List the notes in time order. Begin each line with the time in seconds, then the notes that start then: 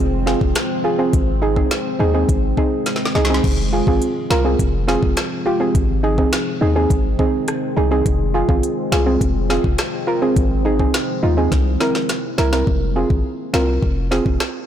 Already playing: F3 G#3 C4
0.00 F1
0.26 C4 F4 G#4, snare
0.41 F1, kick
0.55 finger snap, cross-stick, snare, closed hi-hat
0.84 F4 G#4
0.98 C4 F4 G#4
1.13 G#1 D#3 G#3, kick, closed hi-hat
1.42 D#4 G#4
1.56 C4 D#4 G#4, kick
1.71 finger snap, snare, closed hi-hat
1.99 D#2 D#4 G#4
2.14 C4 D#4 G#4
2.29 G#1, kick, closed hi-hat
2.57 C4 D#4 G#4, kick
2.86 snare, closed hi-hat
2.96 snare
3.05 snare
3.15 C2 D#4 G#4, snare
3.25 snare
3.29 C4 D#4 G#4
3.34 snare
3.44 F1 F3, kick, crash
3.73 F4 G#4
3.87 G#1 C4 F4 G#4, kick
4.02 closed hi-hat
4.30 C2 F4 A#4, finger snap, snare
4.44 C4 F4 G#4
4.59 F1, kick, closed hi-hat
4.88 C4 F4 G#4, snare
5.03 F1, kick
5.17 finger snap, cross-stick, snare, closed hi-hat
5.46 F4 G4
5.60 C4 F4 G#4
5.75 G#1 D#3 G#3, kick, closed hi-hat
6.03 D#4 G#4
6.18 C4 D#4 G#4, kick
6.33 finger snap, snare, closed hi-hat
6.61 D#2 D#4 G#4
6.76 C4 D#4 G#4
6.90 G#1, kick, closed hi-hat
7.19 C4 D#4 G#4, kick
7.48 cross-stick, closed hi-hat
7.76 C2 D#4 G#4
7.91 C4 D#4 G#4
8.06 F1 F3 C4, kick, closed hi-hat
8.34 F4 G#4
8.49 G#1 C4 F4 G#4, kick
8.63 closed hi-hat
8.92 C2 F4 G#4, finger snap, snare
9.06 C4 F4 G#4
9.21 F1, kick, closed hi-hat
9.50 C4 F4 G#4, snare
9.64 F1, kick
9.78 finger snap, cross-stick, snare, closed hi-hat
10.07 F4 A#4
10.22 C4 F4 G#4
10.36 G#1 D#3 G#3, kick, closed hi-hat
10.65 D#4 G#4
10.79 C4 D#4 G#4, kick
10.94 finger snap, snare, closed hi-hat
11.23 D#2 D#4 F4
11.37 C4 D#4 G#4
11.52 C2 C3 G3 A#3 E4, kick, snare, closed hi-hat
11.80 C4 E4 A#4, snare
11.95 snare
12.09 snare, closed hi-hat
12.38 C2 E4 A#4, snare
12.52 C4 E4 A#4, snare
12.67 F1, kick
12.96 C4 F4 G#4
13.10 G#1, kick
13.53 C2 C4 F4 A#4, finger snap, snare
13.82 F1, kick
14.11 C4 F4 G#4, snare
14.26 F1, kick
14.40 finger snap, cross-stick, snare